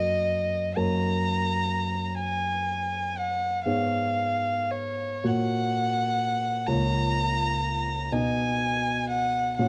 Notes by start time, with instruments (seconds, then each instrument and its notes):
Already playing: grand piano F#2 A#3 F#4 A#4, violin D#5
0.76 grand piano F#2 A#3 A#4 C#5, violin A#5
2.20 violin G#5
3.18 violin F#5
3.66 grand piano G#2 B3 G#4 C#5, violin F5
4.71 violin C#5
5.24 grand piano A#2 A#3 F#4 C#5, violin F#5
6.67 grand piano C#2 A#3 F4 C#5, violin A#5
8.12 grand piano B2 B3 D#4 D#5, violin G#5
9.10 violin F#5
9.58 grand piano A#2 C#4 F#4 C#5, violin F#5